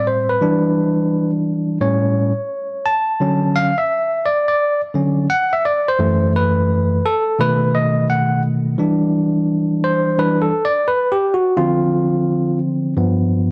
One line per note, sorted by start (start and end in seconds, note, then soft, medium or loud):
0.00 0.37 A2 medium
0.00 0.37 G3 medium
0.00 0.38 C4 medium
0.07 0.30 C5 medium
0.29 1.30 B4 medium
0.41 1.77 E3 medium
0.41 1.77 G3 medium
0.41 1.77 D4 medium
1.81 2.31 A2 medium
1.81 2.31 G3 soft
1.81 2.32 C#4 medium
1.81 2.89 C#5 medium
2.86 3.57 A5 loud
3.20 3.71 D3 medium
3.20 3.71 F#3 medium
3.20 3.71 C#4 medium
3.56 3.79 F5 loud
3.78 4.27 E5 medium
4.26 4.47 D5 loud
4.48 4.80 D5 medium
4.94 5.26 D3 medium
4.94 5.26 F#3 soft
4.94 5.26 C#4 medium
5.30 5.53 F#5 loud
5.53 5.65 E5 medium
5.65 5.88 D5 loud
5.88 6.32 C5 medium
5.99 7.00 F#2 medium
5.99 7.00 E3 medium
5.99 7.00 A3 medium
6.36 7.07 B4 medium
7.05 7.41 A4 medium
7.39 8.74 B2 medium
7.39 8.75 D#3 medium
7.39 8.75 A3 medium
7.39 7.76 B4 loud
7.75 8.07 D#5 medium
8.10 8.42 F#5 medium
8.78 10.17 E3 medium
8.78 10.17 G3 medium
8.78 10.17 D4 medium
9.84 10.20 C5 medium
10.18 10.50 E3 soft
10.18 10.50 G3 soft
10.18 10.50 D4 soft
10.18 10.40 B4 medium
10.42 10.66 A4 medium
10.65 10.86 D5 loud
10.88 11.12 B4 medium
11.12 11.33 G4 medium
11.34 11.58 F#4 medium
11.57 12.93 D3 medium
11.57 12.93 F3 medium
11.57 12.93 C4 medium
11.57 12.58 F4 medium
12.97 13.51 G2 medium
12.97 13.51 F3 medium
12.97 13.51 B3 medium